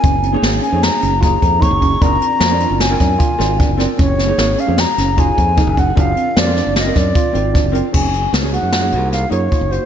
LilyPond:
<<
  \new Staff \with { instrumentName = "Flute" } { \time 5/4 \key bes \minor \tempo 4 = 152 aes''4 r8 aes''8 bes''4 bes''4 des'''4 | bes''2 aes''2~ aes''8 r8 | des''4. f''8 bes''4 aes''4. ges''8 | f''4 d''4 ees''8 d''2 r8 |
aes''4 r8 ges''4. f''8 des''4 c''8 | }
  \new Staff \with { instrumentName = "Hollow-body jazz guitar" } { \time 5/4 \key bes \minor r8. <bes ees' aes' des''>8. r16 <bes ees' aes' des''>4 r16 <bes ees' aes' des''>8. r16 <bes ees' aes' des''>8. r16 | <c' f' bes' d''>4 r16 <c' f' bes' d''>8. r16 <c' f' bes' d''>4 r16 <c' f' bes' d''>8. r16 <c' f' bes' d''>8 | r8. <bes ees' aes' des''>8. r16 <bes ees' aes' des''>4 r16 <bes ees' aes' des''>8. r16 <bes ees' aes' bes'>8. r16 | <c' f' bes' d''>4 r16 <c' f' bes' c''>8. r16 <c' f' bes' d''>4 r16 <c' f' bes' c''>8. r16 <c' f' bes' d''>8 |
<bes ees' aes' des''>4 r16 <bes ees' aes' des''>8. r16 <bes ees' aes' des''>4 r16 <bes ees' aes' des''>4. | }
  \new Staff \with { instrumentName = "Tine electric piano" } { \time 5/4 \key bes \minor des'8 c'8 bes8 des'4 des'8 f'4 ees'8 des'8 | d'8 c'8 bes8 d'4 d'8 f'4 d'8 c'8 | des'8 c'8 bes8 des'4 des'8 f'4 ees'8 des'8 | d'8 c'8 bes8 d'4 d'8 f'4 d'8 c'8 |
des'4 ges'8 ges'8 f'8 ges'4 f'8 f'8 ges'8 | }
  \new Staff \with { instrumentName = "Fingered electric bass" } { \clef bass \time 5/4 \key bes \minor ges,,4 aes,,8 r16 f,8 r16 ges,,4 f,8. ges,,8. | ges,,8 r8 f,8. ges,,8. ges,8 r8 aes,,8. ges,,8 r16 | ges,,4 aes,,8 r16 f,8 r16 ges,,4 f,8. ges,,8. | ges,,8 r8 f,8. ges,,8. ges,8 r8 aes,,8. ges,,8 r16 |
ges,,4 des,8. ges,8. c,4 ges,8 r16 ges,,8 r16 | }
  \new DrumStaff \with { instrumentName = "Drums" } \drummode { \time 5/4 <hh bd>8 hh8 <hh sn>8 hh8 <hh sn>8 hh8 <hh bd sn>8 <hh bd>8 <hh bd>8 <hh bd>8 | <hh bd>8 hh8 <hh sn>8 hh8 <hh sn>8 <hh bd sn>8 <hh bd>8 <hh sn>8 <hh bd>8 <hh sn>8 | <hh bd>8 <hh sn>8 <hh sn>8 hh8 <hh sn>8 <hh sn>8 <hh bd>8 <hh bd>8 <hh bd>8 <hh bd>8 | <hh bd>8 hh8 <hh sn>8 <hh sn>8 <hh sn>8 <hh bd sn>8 <hh bd>8 hh8 <hh bd sn>8 hh8 |
<cymc bd>8 hh8 <hh sn>8 hh8 <hh sn>8 hh8 <hh sn>8 hh8 <hh bd>8 hh8 | }
>>